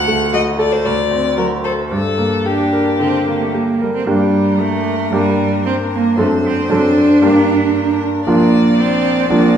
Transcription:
Already playing: grand piano D2, violin F#5
0.08 grand piano A3
0.33 cello A3, grand piano F#4, violin D#5
0.59 grand piano A4, violin D5
0.72 violin C5
0.85 grand piano D2, violin D5
1.11 grand piano C4
1.36 cello F#3, grand piano F#4, violin A#4
1.64 violin A4, grand piano C5
1.91 grand piano G2, violin A4
2.18 grand piano A#3
2.45 cello D4, violin G4, grand piano G4
2.73 grand piano A#4
2.99 grand piano D3, cello C4
3.27 cello A#3, grand piano A#3
3.41 cello A3
3.54 cello A#3, grand piano G4
3.81 cello G3, grand piano A#4
3.96 cello C4
4.06 grand piano G2 A#3 D4 G4, cello G3, violin A#4
4.60 cello A3
5.12 grand piano G2 A#3 D4 G4, cello G3
5.66 cello C4
5.93 cello A#3
6.17 grand piano F#2 C4 D4 A4, cello A3, violin C5
6.46 cello C4
6.70 grand piano F#2 C4 D4 A4, cello D4
7.22 grand piano G2 A#3 D4 G4, violin A#4
8.27 grand piano A#1 A#3 D4 F4, cello A#3, violin D5
8.80 cello C4
9.30 grand piano A#1 A#3 D4 F4, cello A#3

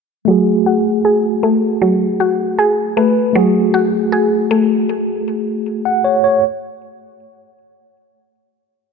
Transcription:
0.25 synth pluck F#3, tine electric piano A3 F#4
0.30 tine electric piano G#4
0.66 synth pluck F#4
1.05 synth pluck G#4
1.43 synth pluck A3
1.82 synth pluck F#3
2.20 synth pluck F#4
2.59 synth pluck G#4
2.97 synth pluck A3, tine electric piano B4
3.33 synth pluck F#3, tine electric piano A3 F#4
3.38 tine electric piano G#4
3.74 synth pluck F#4
4.12 synth pluck G#4
4.51 synth pluck A3
5.85 tine electric piano F#5
6.04 tine electric piano C#5
6.24 tine electric piano C#5

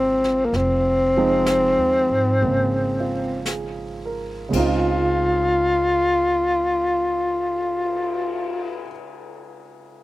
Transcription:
Already playing: upright bass G#1, grand piano C#3 F3 G#3 A#3 D#4 F4, tenor saxophone C4
0.24 snare
0.45 tenor saxophone A#3
0.53 upright bass F1, brush sweep, snare
0.57 tenor saxophone C4
1.17 grand piano F3 G#3 C4 D#4
1.46 snare, hi-hat pedal
1.78 upright bass D#2
2.09 upright bass G#2
2.42 upright bass G#1, grand piano C#3 G#3 A#3, brush sweep
3.00 grand piano F4
3.46 grand piano G#4, snare, hi-hat pedal
4.06 grand piano A#4
4.49 grand piano C#3 G#3
4.53 upright bass C#2, grand piano C4 D#4, tenor saxophone F4, kick, crash
4.60 grand piano F4
5.27 cymbal swell

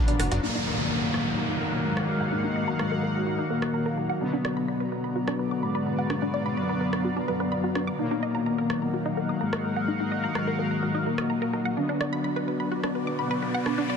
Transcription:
Already playing: analog polysynth F#3 B3 D4, analog synth pad B3 F#4 B4 D5, ambient pad D5 F5 A#5
0.08 synth arpeggio sound D4, closed hi-hat, mid tom
0.19 analog synth bass F#1, synth arpeggio sound F#4, cross-stick, closed hi-hat, open hi-hat
0.32 analog synth bass F#1, synth arpeggio sound F#4, snare, closed hi-hat
0.43 analog polysynth D#3 F#3 A#3, soft synth lead A#3, synth arpeggio sound D#4, analog synth pad D#4 A#4 F5 F#5, ambient pad F#4, downlifter
0.55 synth arpeggio sound D#4
0.67 synth arpeggio sound D#5
0.79 synth arpeggio sound A#5
0.84 ambient pad D#5
0.90 synth arpeggio sound A#5
1.02 synth arpeggio sound A#4
1.14 synth arpeggio sound A#4, cross-stick
1.26 synth arpeggio sound A#5
1.38 synth arpeggio sound F#4
1.50 synth arpeggio sound D#4
1.61 synth arpeggio sound A#4
1.73 synth arpeggio sound D#6
1.85 soft synth lead G#3, synth arpeggio sound A#5
1.97 synth arpeggio sound A#4, cross-stick
2.09 synth arpeggio sound A#4
2.21 synth arpeggio sound F#5
2.32 synth arpeggio sound D#4
2.44 synth arpeggio sound D#4
2.56 synth arpeggio sound D#5
2.68 synth arpeggio sound A#5
2.79 soft synth lead G#3, synth arpeggio sound A#5, cross-stick
2.91 synth arpeggio sound A#4
3.03 synth arpeggio sound A#4
3.15 synth arpeggio sound A#5
3.27 synth arpeggio sound F#4
3.39 synth arpeggio sound D#4
3.50 soft synth lead A#3, synth arpeggio sound A#4
3.62 synth arpeggio sound D#6, cross-stick
3.74 synth arpeggio sound A#5
3.86 synth arpeggio sound A#4
3.97 synth arpeggio sound A#4
4.09 synth arpeggio sound F#5
4.21 analog polysynth D3 F#3 B3, analog synth pad B3 F#4 B4 D5, ambient pad B3, soft synth lead B3, synth arpeggio sound D4
4.33 synth arpeggio sound D4
4.45 synth arpeggio sound D5, cross-stick
4.51 ambient pad D5
4.57 ambient pad F5, synth arpeggio sound B5
4.68 synth arpeggio sound B5
4.80 synth arpeggio sound B4
4.92 synth arpeggio sound B4
5.04 synth arpeggio sound B5
5.16 synth arpeggio sound F#4
5.28 synth arpeggio sound D4, cross-stick
5.39 synth arpeggio sound B4
5.51 synth arpeggio sound D6
5.63 soft synth lead G#3, synth arpeggio sound B5
5.75 synth arpeggio sound B4
5.87 synth arpeggio sound B4
5.98 synth arpeggio sound F#5
6.10 synth arpeggio sound D4, cross-stick
6.22 synth arpeggio sound D4
6.34 synth arpeggio sound D5
6.46 synth arpeggio sound B5
6.57 soft synth lead F#3, synth arpeggio sound B5
6.69 synth arpeggio sound B4
6.81 synth arpeggio sound B4
6.93 synth arpeggio sound B5, cross-stick
7.04 synth arpeggio sound F#4
7.17 synth arpeggio sound D4
7.28 soft synth lead F#3, synth arpeggio sound B4
7.40 synth arpeggio sound B4
7.52 synth arpeggio sound B5
7.64 synth arpeggio sound F#4
7.75 synth arpeggio sound D4, cross-stick
7.87 synth arpeggio sound D6
7.99 analog polysynth D#3 F#3 A#3, soft synth lead A#3, synth arpeggio sound D#4, analog synth pad D#4 A#4 F5 F#5, ambient pad F#4
8.11 synth arpeggio sound D#4
8.23 synth arpeggio sound D#5
8.35 synth arpeggio sound A#5
8.46 synth arpeggio sound A#5
8.58 synth arpeggio sound A#4, ambient pad D#5
8.70 synth arpeggio sound A#4, cross-stick
8.82 synth arpeggio sound A#5
8.94 synth arpeggio sound F#4
9.06 synth arpeggio sound D#4
9.17 synth arpeggio sound A#4
9.29 synth arpeggio sound D#6
9.41 soft synth lead G#3, synth arpeggio sound A#5
9.53 synth arpeggio sound A#4, cross-stick
9.64 synth arpeggio sound A#4
9.76 synth arpeggio sound F#5
9.88 synth arpeggio sound D#4
10.00 synth arpeggio sound D#4
10.12 synth arpeggio sound D#5
10.24 synth arpeggio sound A#5
10.35 soft synth lead G#3, synth arpeggio sound A#5, cross-stick
10.47 synth arpeggio sound A#4
10.59 synth arpeggio sound A#4
10.71 synth arpeggio sound A#5
10.83 synth arpeggio sound F#4
10.95 synth arpeggio sound D#4
11.06 soft synth lead A#3, synth arpeggio sound A#4
11.18 synth arpeggio sound D#6, cross-stick
11.30 synth arpeggio sound A#5
11.42 synth arpeggio sound A#4
11.53 synth arpeggio sound A#4
11.65 synth arpeggio sound F#5
11.77 analog polysynth D3 F#3 B3, analog synth pad B3 F#4 B4 D5, ambient pad B3, synth arpeggio sound D4, soft synth lead D4, riser
11.89 synth arpeggio sound D4
11.99 synth arpeggio sound D5, ambient pad F5, cross-stick
12.13 synth arpeggio sound B5
12.24 synth arpeggio sound B5
12.36 synth arpeggio sound B4
12.48 synth arpeggio sound B4, ambient pad D5
12.60 synth arpeggio sound B5
12.72 synth arpeggio sound F#4
12.84 synth arpeggio sound D4, cross-stick
12.95 synth arpeggio sound B4
13.07 synth arpeggio sound D6
13.19 soft synth lead B3, synth arpeggio sound B5
13.31 synth arpeggio sound B4
13.42 synth arpeggio sound B4
13.54 synth arpeggio sound F#5
13.66 synth arpeggio sound D4, cross-stick
13.78 synth arpeggio sound D4
13.90 synth arpeggio sound D5

